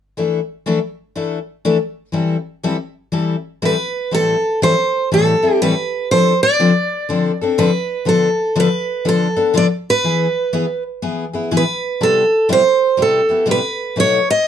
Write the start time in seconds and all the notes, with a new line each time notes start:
0.17 E3 A3 D4 E4 A4
0.66 E3 A3 D4 E4 A4
1.16 E3 A3 D4 E4 A4
1.65 E3 A3 D4 E4 A4
2.12 E3 G3 C4 E4 A4
2.63 E3 G3 C4 E4 A4
3.12 E3 G3 C4 E4 A4
3.62 E3 G3 C4 E4 A4 B4
4.11 A2 E3 G3 C4 E4 A4
4.62 A2 E3 G3 C4 E4 A4 C5
5.12 A2 E3 G3 C4 E4 A4
5.42 G3 C4 E4 A4
5.62 A2 E3 G3 C4 E4 A4 B4
6.11 D3 F3 C4 D4 A4 C5
6.43 D5
6.60 D3 F3 C4 D4 A4
7.09 D3 F3 C4 D4 A4
7.41 C4 D4 A4
7.58 D3 F3 C4 D4 A4 B4
8.05 D3 F3 B3 D4 A4
8.56 D3 F3 B3 D4 A4
8.60 B4
9.05 D3 F3 B3 D4 A4
9.36 B3 D4 A4
9.54 D3 F3 B3 D4 A4 D5
9.90 B4
10.04 E3 B3 E4 G#4
10.53 E3 B3 E4 G#4
11.02 E3 B3 E4 G#4
11.33 B3 E4 G#4
11.51 E3 B3 E4 G#4
11.57 B4
12.01 C3 G3 B3 E4 G4 A4
12.49 C3 G3 B3 E4 G4 C5
12.97 C3 G3 B3 E4 G4
13.02 A4
13.29 B3 E4 G4
13.46 C3 G3 B3 E4 G4
13.51 B4
13.96 B2 F#3 A3 D#4 F#4 C#5
14.30 D#5